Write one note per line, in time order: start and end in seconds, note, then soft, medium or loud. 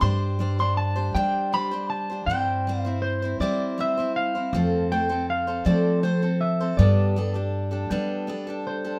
0.01 1.11 G2 medium
0.01 0.38 G3 medium
0.01 0.39 D4 medium
0.01 0.39 G4 medium
0.01 0.40 C5 medium
0.01 0.55 C6 medium
0.39 0.59 G3 soft
0.39 0.59 D4 medium
0.39 0.59 G4 medium
0.39 0.58 C5 medium
0.59 0.97 D4 soft
0.59 0.95 G4 soft
0.59 0.94 C5 soft
0.59 0.77 C6 medium
0.77 1.13 A5 medium
0.96 1.15 D4 soft
0.96 1.15 G4 soft
0.96 1.15 C5 medium
1.15 2.24 G3 medium
1.15 1.51 G3 medium
1.15 1.52 D4 medium
1.15 1.53 G4 medium
1.15 1.54 C5 medium
1.15 1.54 G5 medium
1.53 1.72 G3 soft
1.53 1.72 D4 soft
1.53 1.71 G4 medium
1.53 1.70 C5 medium
1.53 1.89 B5 medium
1.71 2.10 D4 soft
1.71 2.10 G4 soft
1.71 2.08 C5 medium
1.90 2.26 A5 medium
2.10 2.30 D4 soft
2.10 2.29 G4 soft
2.10 2.28 C5 soft
2.26 3.36 G2 medium
2.26 2.66 G3 medium
2.26 2.67 C4 medium
2.26 2.79 G5 medium
2.31 2.67 E4 medium
2.31 2.67 C5 medium
2.67 2.85 G3 medium
2.67 2.86 C4 medium
2.67 2.85 E4 medium
2.67 2.83 C5 medium
2.79 2.99 F5 medium
2.85 3.23 C4 soft
2.85 3.23 E4 soft
2.85 3.21 C5 medium
3.02 3.40 C5 medium
3.22 3.41 C4 soft
3.22 3.41 E4 soft
3.22 3.41 C5 soft
3.40 4.49 G3 medium
3.40 3.76 G3 medium
3.40 3.78 C4 medium
3.40 3.79 E4 medium
3.40 3.79 C5 medium
3.40 3.80 D5 medium
3.78 3.97 G3 soft
3.78 3.98 C4 soft
3.78 3.98 E4 medium
3.78 3.96 C5 medium
3.78 4.15 E5 medium
3.97 4.36 C4 soft
3.97 4.35 E4 soft
3.97 4.34 C5 medium
4.16 4.87 F5 medium
4.35 4.53 C4 soft
4.35 4.54 E4 soft
4.35 4.54 C5 soft
4.53 5.62 F2 loud
4.53 4.92 F3 medium
4.53 4.91 A3 medium
4.53 4.91 C4 medium
4.53 4.92 A4 medium
4.53 4.92 C5 medium
4.92 5.10 A3 medium
4.92 5.10 C4 medium
4.92 5.09 A4 soft
4.92 5.08 C5 medium
4.92 5.30 G5 medium
5.09 5.49 C4 soft
5.09 5.47 A4 soft
5.09 5.46 C5 medium
5.30 5.64 F5 medium
5.47 5.65 C4 soft
5.47 5.65 A4 soft
5.47 5.66 C5 medium
5.65 6.03 F3 medium
5.65 6.74 F3 medium
5.65 6.02 A3 medium
5.65 6.02 C4 medium
5.65 6.03 A4 medium
5.65 6.04 C5 medium
5.65 6.01 D5 medium
6.03 6.22 A3 medium
6.03 6.22 C4 soft
6.03 6.22 A4 soft
6.03 6.42 C5 medium
6.03 6.21 C5 medium
6.22 6.61 C4 soft
6.22 6.59 A4 soft
6.22 6.59 C5 soft
6.41 6.76 E5 medium
6.60 6.79 C4 soft
6.60 6.79 A4 soft
6.60 6.79 C5 soft
6.77 7.87 G2 medium
6.77 7.16 G3 medium
6.77 7.15 B3 medium
6.77 7.16 D4 medium
6.77 7.16 G4 medium
6.77 7.17 A4 medium
6.77 8.62 D5 medium
7.16 7.35 B3 soft
7.16 7.35 D4 medium
7.16 7.34 G4 medium
7.16 7.33 A4 medium
7.34 7.71 D4 soft
7.34 7.70 G4 soft
7.34 7.70 A4 soft
7.71 7.90 D4 soft
7.71 7.91 G4 soft
7.71 7.90 A4 soft
7.90 8.99 G3 medium
7.90 8.28 G3 medium
7.90 8.26 B3 medium
7.90 8.27 D4 medium
7.90 8.28 G4 medium
7.90 8.28 A4 medium
8.27 8.47 B3 soft
8.27 8.47 D4 medium
8.27 8.47 G4 medium
8.27 8.46 A4 medium
8.47 8.85 D4 soft
8.47 8.84 G4 soft
8.47 8.83 A4 medium
8.67 8.99 C5 medium
8.85 8.99 D4 soft
8.85 8.99 G4 soft
8.85 8.99 A4 medium